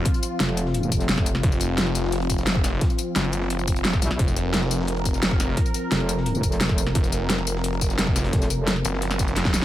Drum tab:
HH |xxx-x-x-x-xxx-x-|xxx-x-x-xxx-x-x-|xxx-x-x-x-xxx-xx|xxx-x-x-xxx-x-x-|
TB |-xx---x--xxx--x-|-xx---x---xx--x-|-xx---x--xxx--x-|-xx---x---xx--x-|
SD |----oo-o----oo-o|----oo-o---oo-oo|o---oo-o----oo-o|----oo-o---oo-oo|
BD |o---------o--o--|o---------o--o--|o---------o--o--|o---------o--o--|

HH |xxx-x-x-x-xxx-x-|xxx-x-x-xxx-x-xx|xxx-x-x-x-x-x-x-|
TB |-xx---x--xxx--x-|-xx---x---xx--x-|-xx---x--xxx--x-|
SD |----oo-o----oo-o|----oo-o---oo-oo|oo--oo-oooooooo-|
BD |o---------o--o--|o---------o--o--|o---------o--o--|